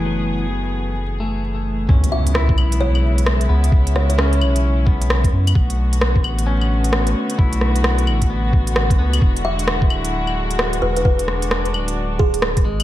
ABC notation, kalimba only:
X:1
M:4/4
L:1/16
Q:"Swing 16ths" 1/4=131
K:C#phr
V:1 name="Kalimba"
z16 | z2 e2 z4 c2 z6 | z2 c c z12 | z16 |
z16 | z2 e2 z8 z2 B B | B2 z8 G6 |]